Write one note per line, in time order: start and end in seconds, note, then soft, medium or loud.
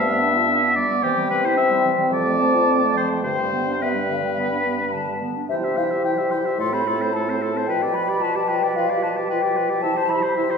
0.00 0.75 G2 medium
0.00 0.75 B3 medium
0.00 0.77 E5 medium
0.00 0.72 A5 medium
0.08 0.23 B3 soft
0.22 0.37 D4 soft
0.36 0.50 F4 soft
0.48 0.64 D4 medium
0.63 0.78 B3 medium
0.76 0.92 G3 soft
0.76 1.04 D5 medium
0.91 1.04 B3 soft
1.03 2.13 C3 medium
1.03 1.19 E3 medium
1.03 3.24 C4 medium
1.03 1.30 G4 medium
1.03 2.14 G5 medium
1.17 1.33 G3 soft
1.30 1.46 C4 medium
1.30 1.47 B4 medium
1.45 1.59 E4 soft
1.45 1.57 C5 medium
1.57 1.73 C4 medium
1.57 1.92 E5 medium
1.71 1.86 G3 soft
1.85 2.00 E3 soft
1.98 2.12 G3 soft
2.12 3.25 F2 medium
2.12 2.28 F3 soft
2.12 2.92 D5 medium
2.12 3.24 A5 soft
2.27 2.42 A3 soft
2.40 2.55 C4 soft
2.54 2.70 F4 soft
2.69 2.83 C4 soft
2.82 2.97 A3 soft
2.96 3.11 F3 soft
2.96 3.09 C5 medium
3.10 3.23 A3 soft
3.23 5.21 G2 medium
3.23 3.40 D3 soft
3.23 5.21 G3 soft
3.23 3.84 C5 medium
3.23 3.75 G5 soft
3.39 3.55 G3 soft
3.53 3.68 B3 soft
3.67 3.83 D4 soft
3.81 3.96 B3 soft
3.81 5.22 B4 medium
3.81 3.88 E5 medium
3.95 4.11 G3 soft
4.09 4.25 D3 soft
4.09 4.24 F5 soft
4.24 4.37 G3 soft
4.24 4.31 G5 soft
4.38 4.53 B3 soft
4.38 4.94 B5 medium
4.52 4.67 D4 soft
4.65 4.82 B3 soft
4.80 4.96 G3 soft
4.92 5.10 D3 soft
4.92 5.48 A5 soft
5.08 5.23 G3 soft
5.22 5.38 B3 soft
5.36 5.50 D4 soft
5.48 6.61 C3 medium
5.48 5.63 E3 soft
5.48 5.66 E4 soft
5.48 5.55 E5 medium
5.48 5.65 G5 soft
5.61 5.78 G3 soft
5.61 5.81 G4 soft
5.61 5.78 E5 soft
5.76 5.93 E3 soft
5.76 5.95 E4 soft
5.76 5.83 F5 medium
5.76 5.92 G5 soft
5.91 6.04 G3 soft
5.91 6.07 G4 soft
5.91 6.04 E5 soft
6.04 6.18 E3 soft
6.04 6.22 E4 soft
6.04 6.11 G5 medium
6.04 6.19 G5 soft
6.17 6.32 G3 soft
6.17 6.36 G4 soft
6.17 6.33 E5 soft
6.31 6.46 E3 soft
6.31 6.47 G5 soft
6.31 6.37 C6 medium
6.35 6.49 E4 soft
6.44 6.57 G3 soft
6.44 6.60 G4 soft
6.44 6.59 E5 soft
6.58 7.69 A2 medium
6.58 6.73 A3 soft
6.58 6.74 F4 soft
6.58 6.75 A4 soft
6.58 6.72 C6 medium
6.72 6.86 C4 soft
6.72 6.89 A4 soft
6.72 6.89 C5 soft
6.72 7.15 B5 medium
6.84 6.99 A3 soft
6.84 7.03 F4 soft
6.84 7.03 A4 soft
6.98 7.13 C4 soft
6.98 7.14 A4 soft
6.98 7.15 C5 soft
7.13 7.29 A3 soft
7.13 7.31 F4 soft
7.13 7.31 A4 soft
7.13 7.68 A5 medium
7.28 7.43 C4 soft
7.28 7.43 A4 soft
7.28 7.43 C5 soft
7.41 7.56 A3 soft
7.41 7.57 F4 soft
7.41 7.59 A4 soft
7.54 7.67 C4 soft
7.54 7.68 A4 soft
7.54 7.68 C5 soft
7.67 9.84 B2 medium
7.67 7.82 F3 soft
7.67 7.83 F4 soft
7.67 7.84 B4 soft
7.67 7.95 G5 medium
7.81 7.95 G3 soft
7.81 7.97 G4 soft
7.81 7.97 D5 soft
7.93 8.09 F3 soft
7.93 8.11 F4 soft
7.93 8.11 B4 soft
7.93 8.23 B5 medium
8.07 8.20 G3 soft
8.07 8.22 G4 soft
8.07 8.23 D5 soft
8.21 8.36 F3 soft
8.21 8.38 F4 soft
8.21 8.37 B4 soft
8.21 8.49 A5 medium
8.35 8.49 G3 soft
8.35 8.52 G4 soft
8.35 8.50 D5 soft
8.47 8.63 F3 soft
8.47 8.65 F4 soft
8.47 8.65 B4 soft
8.47 8.78 G5 medium
8.61 8.74 G3 soft
8.61 8.77 G4 soft
8.61 8.76 D5 soft
8.75 8.89 F3 soft
8.75 8.92 F4 soft
8.75 8.92 B4 soft
8.75 9.02 F5 medium
8.88 9.03 G3 soft
8.88 9.04 G4 soft
8.88 9.05 D5 soft
9.01 9.16 F3 soft
9.01 9.18 F4 soft
9.01 9.18 B4 soft
9.01 9.09 A5 medium
9.15 9.27 G3 soft
9.15 9.30 G4 soft
9.15 9.30 D5 soft
9.28 9.43 F3 soft
9.28 9.44 F4 soft
9.28 9.44 B4 soft
9.28 9.83 G5 medium
9.41 9.56 G3 soft
9.41 9.58 G4 soft
9.41 9.58 D5 soft
9.55 9.70 F3 soft
9.55 9.72 F4 soft
9.55 9.71 B4 soft
9.68 9.81 G3 soft
9.68 9.83 G4 soft
9.68 9.82 D5 soft
9.82 10.58 C3 medium
9.82 9.96 E3 soft
9.82 9.98 E4 soft
9.82 9.98 E5 soft
9.82 10.11 A5 medium
9.95 10.10 G3 soft
9.95 10.11 G4 soft
9.95 10.12 C5 soft
10.09 10.23 E3 soft
10.09 10.24 E4 soft
10.09 10.24 E5 soft
10.09 10.37 B5 medium
10.21 10.35 G3 soft
10.21 10.36 G4 soft
10.21 10.36 C5 soft
10.35 10.51 E3 soft
10.35 10.51 E4 soft
10.35 10.52 E5 soft
10.35 10.58 C6 medium
10.49 10.58 G3 soft
10.49 10.58 G4 soft
10.49 10.58 C5 soft